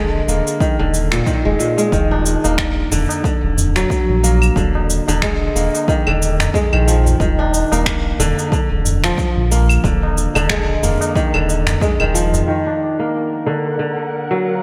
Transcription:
Already playing: analog synth bass D#1, kora D3 G#3 A#3
0.28 analog synth bass D#1, kora A#3, shaker
0.47 shaker
0.61 kora D#3, kick, shaker
0.79 analog synth bass D#1, kora D3
0.94 shaker
1.12 kora A#2, finger snap, shaker
1.26 kora D#3, kick, shaker
1.45 analog synth bass D#1, kora G#3
1.59 kora A#2, shaker
1.78 kora G#3, shaker
1.92 analog synth bass D#1, kora D#3, kick, shaker
2.11 kora D4, tabla na
2.24 tabla tin, shaker
2.44 analog synth bass D#1, kora A#3, tabla na, shaker
2.58 finger snap, kick, shaker
2.90 analog synth bass D#1, kora D3, tabla ge, shaker
3.09 tabla na, shaker
3.24 kora D3, kick, shaker
3.43 analog synth bass D#1
3.57 tabla tin, tabla ge, shaker
3.76 kora F#3, finger snap, shaker
3.90 kick, shaker
4.09 analog synth bass A#1
4.23 kora A#3, tabla tin, shaker
4.42 claves, shaker
4.56 analog synth bass D#1, kora D3, kick, shaker
4.75 tabla na
4.90 tabla tin, shaker
5.08 analog synth bass D#1, kora D3, tabla na, shaker
5.22 kora G#3, finger snap, kick, shaker
5.55 analog synth bass D#1, kora A#3, shaker
5.74 tabla na, shaker
5.88 kora D#3, kick, shaker
6.07 analog synth bass D#1, kora D3, claves
6.22 tabla tin, shaker
6.39 finger snap, tabla na, tabla ge, shaker
6.54 kora G#3, kick, tabla tin, shaker
6.72 analog synth bass A#1, kora D#3, claves
6.87 kora F3, tabla tin, shaker
7.05 tabla tin, tabla ge, shaker
7.20 analog synth bass D#1, kora D#3, kick, shaker
7.39 kora D4, tabla na
7.53 tabla tin, shaker
7.72 analog synth bass D#1, kora A#3, tabla na, shaker
7.86 finger snap, kick, shaker
8.18 analog synth bass D#1, kora D3, tabla ge, shaker
8.38 tabla na, shaker
8.52 kora D3, kick, shaker
8.71 analog synth bass D#1
8.85 tabla tin, tabla ge, shaker
9.04 kora F3, finger snap, shaker
9.18 kick, shaker
9.37 analog synth bass A#1
9.51 kora A#3, tabla tin, shaker
9.69 claves, shaker
9.84 analog synth bass D#1, kora D3, kick, shaker
10.03 tabla na
10.16 tabla tin, shaker
10.35 analog synth bass D#1, kora D3, tabla na, claves, shaker
10.49 kora G#3, finger snap, kick, shaker
10.83 analog synth bass D#1, kora A#3, tabla ge, shaker
11.01 tabla na, shaker
11.16 kora D#3, kick, shaker
11.34 analog synth bass D#1, kora D3, claves
11.49 tabla tin, shaker
11.66 finger snap, tabla na, tabla ge, shaker
11.81 kora G#3, kick, tabla tin, shaker
12.00 analog synth bass D#1, kora D#3, claves
12.14 kora F3, tabla tin, shaker
12.33 tabla tin, tabla ge, shaker
12.48 kora D#3
12.66 kora D4
12.97 kora A#3, string section A#4
13.25 string section F#5
13.46 kora D3
13.79 kora D3
14.31 kora F#3
14.44 string section F5

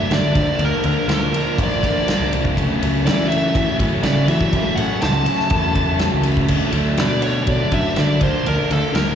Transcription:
Already playing: overdriven electric guitar A3 D4, lead electric guitar E5
0.11 picked electric bass D3, overdriven electric guitar D3 F#3 A3 D4, lead electric guitar D5, snare, ride
0.34 picked electric bass D2, overdriven electric guitar D3 F3 A#3 D4, kick, ride
0.59 picked electric bass D2, overdriven electric guitar D3 F3 A#3 D4, ride
0.65 lead electric guitar A#4
0.84 picked electric bass D2, overdriven electric guitar D3 F3 A#3 D4, ride
1.08 picked electric bass D2, overdriven electric guitar D3 F3 A#3 D4, snare, ride
1.14 lead electric guitar A#4
1.34 overdriven electric guitar D3 F3 A#3 D4, ride
1.58 picked electric bass A1, overdriven electric guitar D3 F3 A#3 D4, kick, ride
1.63 lead electric guitar D5
1.83 overdriven electric guitar D3 F3 A#3 D4, kick, ride
2.08 overdriven electric guitar D3 F3 A#3 D4, snare, ride
2.20 picked electric bass C2
2.32 overdriven electric guitar D3 F3 A#3 D4, ride
2.45 kick
2.57 picked electric bass C#2, overdriven electric guitar C#3 F#3 A3 C#4, kick, ride
2.80 picked electric bass C#2, overdriven electric guitar C#3 F#3 A3 C#4, ride
3.05 overdriven electric guitar C#3 F#3 A3 C#4, picked electric bass E3, lead electric guitar D5, snare, ride
3.28 overdriven electric guitar C#3 F#3 A3 C#4, lead electric guitar E5, ride
3.55 overdriven electric guitar C#3 F#3 A3 C#4, picked electric bass E3, kick, ride
3.79 picked electric bass A2, overdriven electric guitar C#3 F#3 A3 C#4, kick, ride
4.03 overdriven electric guitar C#3 F#3 A3 C#4, picked electric bass C#3, lead electric guitar D5, snare, ride
4.28 overdriven electric guitar C#3 F#3 A3 C#4, picked electric bass E3, lead electric guitar E5, ride
4.41 kick
4.53 picked electric bass C#2, overdriven electric guitar C#3 F#3 A3 C#4, kick, ride
4.76 picked electric bass A2, overdriven electric guitar C#3 F#3 A3 C#4, lead electric guitar F#5, ride
5.01 picked electric bass C#2, overdriven electric guitar C#3 F#3 A3 C#4, lead electric guitar A5, snare, ride
5.26 overdriven electric guitar C#3 F#3 A3 C#4, ride
5.40 snare
5.50 picked electric bass E2, overdriven electric guitar C#3 F#3 A3 C#4, kick, ride
5.75 overdriven electric guitar C#3 F#3 A3 C#4, kick, ride
5.99 overdriven electric guitar C#3 F#3 A3 C#4, snare, ride
6.13 picked electric bass C#2
6.23 overdriven electric guitar C#3 F#3 A3 C#4, ride
6.37 kick
6.48 picked electric bass D2, overdriven electric guitar D3 F#3 A3 D4, kick, crash
6.72 picked electric bass D2, overdriven electric guitar D3 F#3 A3 D4, ride
6.97 picked electric bass B2, overdriven electric guitar D3 F#3 A3 D4, lead electric guitar D5, snare, ride
7.22 overdriven electric guitar D3 F#3 A3 D4, lead electric guitar C#5, ride
7.43 lead electric guitar C#5, ride
7.47 picked electric bass B2, overdriven electric guitar D3 F#3 A3 D4, lead electric guitar D5, kick
7.72 picked electric bass F#2, overdriven electric guitar D3 F#3 A3 D4, lead electric guitar E5, kick, ride
7.96 picked electric bass D3, overdriven electric guitar D3 F#3 A3 D4, lead electric guitar D5, snare, ride
8.21 picked electric bass D2, overdriven electric guitar D3 F3 A#3 D4, lead electric guitar C5, kick, ride
8.46 picked electric bass D2, overdriven electric guitar D3 F3 A#3 D4, lead electric guitar A#4, ride
8.70 picked electric bass D2, overdriven electric guitar D3 F3 A#3 D4, lead electric guitar A4, ride
8.93 picked electric bass D2, overdriven electric guitar D3 F3 A#3 D4, lead electric guitar A#4, snare, ride

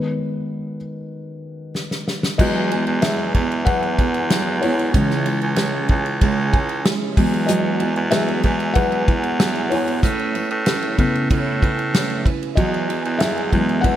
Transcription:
Already playing: felt piano D#3 G#3 B3 D#4 B4
1.75 snare
1.91 snare
2.08 snare
2.23 snare
2.38 baritone saxophone E2, steel-string acoustic guitar E3 F#3 B3 E4 G#4, felt piano E3 F#3 G#3 F#4 D#5, kick, crash
2.71 steel-string acoustic guitar B3 E4 G#4, ride
2.87 baritone saxophone E2, ride
3.02 steel-string acoustic guitar F#3 B3 E4 G#4, felt piano G#4 E5, snare, ride
3.35 baritone saxophone E2, steel-string acoustic guitar B3 E4 G#4, kick, ride
3.52 ride
3.65 baritone saxophone E2, steel-string acoustic guitar E3 F#3 B3 E4 G#4, felt piano B4 F#5, kick, ride
3.83 ride
3.98 steel-string acoustic guitar B3 E4 G#4, kick, ride
4.14 ride
4.30 steel-string acoustic guitar F#3 B3 E4 G#4, snare, ride
4.62 steel-string acoustic guitar B3 E4 G#4, felt piano E4 C#5, open hi-hat, ride
4.79 ride
4.94 baritone saxophone C#2, steel-string acoustic guitar C#3 G#3 C#4 E4 G#4, felt piano C#3 E3 G#3, kick, hi-hat pedal, ride
5.10 snare
5.26 steel-string acoustic guitar C#4 E4 G#4, ride
5.42 baritone saxophone C#2, ride
5.56 steel-string acoustic guitar G#3 C#4 E4 G#4, snare, ride
5.89 baritone saxophone C#2, steel-string acoustic guitar C#4 E4 G#4, kick, ride
6.06 ride
6.21 baritone saxophone C#2, steel-string acoustic guitar C#3 G#3 C#4 E4 G#4, kick, ride
6.52 steel-string acoustic guitar C#4 E4 G#4, kick, ride
6.69 ride
6.85 steel-string acoustic guitar G#3 C#4 E4 G#4, snare, ride
7.16 baritone saxophone E2, felt piano E3 F#3 G#3, steel-string acoustic guitar B3 E4 G#4, kick, open hi-hat, ride
7.34 ride
7.46 steel-string acoustic guitar E3 F#3 B3 E4 G#4, felt piano F#4 D#5, hi-hat pedal, ride
7.80 steel-string acoustic guitar B3 E4 G#4, ride
7.96 baritone saxophone E2, ride
8.11 felt piano E3 F#3 G#3 G#4 E5, steel-string acoustic guitar F#3 B3 E4 G#4, snare, ride
8.28 ride
8.43 baritone saxophone E2, steel-string acoustic guitar B3 E4 G#4, kick, ride
8.60 ride
8.74 baritone saxophone E2, steel-string acoustic guitar E3 F#3 B3 E4 G#4, felt piano B4 F#5, kick, ride
8.92 ride
9.07 steel-string acoustic guitar B3 E4 G#4, kick, ride
9.24 ride
9.39 steel-string acoustic guitar F#3 B3 E4 G#4, snare, ride
9.56 ride
9.70 steel-string acoustic guitar B3 E4 G#4, felt piano E4 C#5, open hi-hat, ride
9.88 ride
10.02 baritone saxophone A2, steel-string acoustic guitar A3 C#4 E4 B4, kick, hi-hat pedal, ride
10.19 ride
10.34 steel-string acoustic guitar C#4 E4 B4, ride
10.51 baritone saxophone A2, ride
10.66 steel-string acoustic guitar A3 C#4 E4 B4, snare, ride
10.83 ride
10.97 baritone saxophone A2, felt piano C#3 A3 B3, steel-string acoustic guitar C#4 E4 B4, kick, ride
11.15 ride
11.30 baritone saxophone A2, steel-string acoustic guitar A3 C#4 E4 B4, kick, ride
11.61 steel-string acoustic guitar C#4 E4 B4, kick, ride
11.79 ride
11.93 steel-string acoustic guitar A3 C#4 E4 B4, snare, ride
12.10 ride
12.25 steel-string acoustic guitar C#4 E4 B4, kick, ride
12.43 ride
12.55 baritone saxophone E2, steel-string acoustic guitar E3 F#3 B3 E4 G#4, felt piano F#4 D#5, kick, ride
12.74 ride
12.88 steel-string acoustic guitar B3 E4 G#4, ride
13.05 baritone saxophone E2, ride
13.18 steel-string acoustic guitar F#3 B3 E4 G#4, felt piano G#4 E5, snare, ride
13.38 ride
13.51 baritone saxophone E2, felt piano E3 F#3 G#3, steel-string acoustic guitar B3 E4 G#4, kick, ride
13.69 ride
13.81 baritone saxophone E2, steel-string acoustic guitar E3 F#3 B3 E4 G#4, felt piano B4 F#5, kick, ride

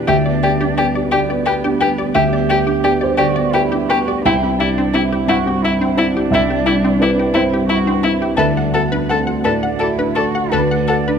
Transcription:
Already playing: grand piano B2 B3 G4 A4 B4, cello D4
0.07 grand piano D2 E5, ambient pad G3 D4 B4, synth pluck G4, violin G4
0.26 grand piano B3, synth pluck D5
0.43 violin G4, grand piano G4, synth pluck D5
0.61 grand piano D4, synth pluck G4
0.78 grand piano B3, violin G4, synth pluck D5
0.95 grand piano G4, synth pluck D5
1.11 grand piano D3 D5, cello B3, violin G4, synth pluck G4
1.30 grand piano B3, synth pluck D5
1.46 violin G4, grand piano G4, synth pluck B4
1.64 grand piano D4, synth pluck G4
1.81 grand piano B3, violin G4, synth pluck B4
1.98 grand piano G4, synth pluck D5
2.15 grand piano D2 E5, violin G4, synth pluck G4, cello G4
2.32 grand piano B3, synth pluck D5
2.49 grand piano G4, violin G4, synth pluck D5
2.67 grand piano D4, synth pluck G4
2.84 grand piano B3, violin G4, synth pluck D5
3.01 grand piano G4 C5, synth pluck D5
3.18 grand piano D3 D5, cello F#4, violin G4, synth pluck G4
3.36 grand piano B3, synth pluck D5
3.53 cello E4, violin G4, grand piano G4, synth pluck B4
3.72 grand piano D4, synth pluck G4
3.89 grand piano B3, cello F#4, violin G4, synth pluck B4
4.07 grand piano G4, synth pluck D5
4.25 grand piano C2 G5, ambient pad G3 E4 D5, synth pluck C4, cello E4, violin E4
4.43 grand piano C4, synth pluck G4
4.59 cello D4, grand piano E4, violin E4, synth pluck G4
4.77 synth pluck C4, grand piano D4
4.94 grand piano C4, violin E4, cello E4, synth pluck G4
5.11 grand piano E4, synth pluck G4
5.27 grand piano G2 F#5, synth pluck C4, violin E4, cello F#4
5.46 grand piano C4, synth pluck G4
5.62 grand piano E4, cello E4, synth pluck E4, violin E4
5.79 synth pluck C4, grand piano D4
5.97 grand piano C4, cello D4, violin E4, synth pluck E4
6.14 grand piano E4, synth pluck G4
6.30 grand piano C2 E5, synth pluck C4, violin E4
6.48 grand piano C4, synth pluck G4
6.65 grand piano E4, violin E4, synth pluck G4
6.83 synth pluck C4, grand piano D4
7.00 grand piano C4 B4, violin E4, synth pluck G4
7.17 grand piano E4, synth pluck G4
7.34 grand piano G2 C5, synth pluck C4, violin E4, cello E4
7.51 grand piano C4, synth pluck G4
7.69 grand piano E4, violin E4, synth pluck E4, cello F#4
7.87 synth pluck C4, grand piano D4
8.03 grand piano C4, violin E4, cello E4, synth pluck E4
8.21 grand piano E4, synth pluck G4
8.37 grand piano D2 E5, ambient pad A3 F#4 D5, cello D4, violin A4, synth pluck B4
8.56 grand piano A3, synth pluck F#5
8.74 cello B3, grand piano F#4, violin A4, synth pluck F#5
8.91 grand piano D4, synth pluck B4
9.08 grand piano A3, cello C4, violin A4, synth pluck F#5
9.27 grand piano F#4, synth pluck F#5
9.44 grand piano A2 D5, cello D4, violin A4, synth pluck B4
9.63 grand piano A3, synth pluck F#5
9.79 cello E4, grand piano F#4, violin A4, synth pluck D5
9.98 grand piano D4, synth pluck B4
10.15 grand piano A3, cello F#4, violin A4, synth pluck D5
10.35 grand piano F#4, synth pluck F#5
10.51 grand piano D2 B4, cello D4, violin A4, synth pluck B4
10.71 grand piano A3, synth pluck F#5
10.88 grand piano F#4, violin A4, synth pluck F#5
11.08 grand piano D4, synth pluck B4

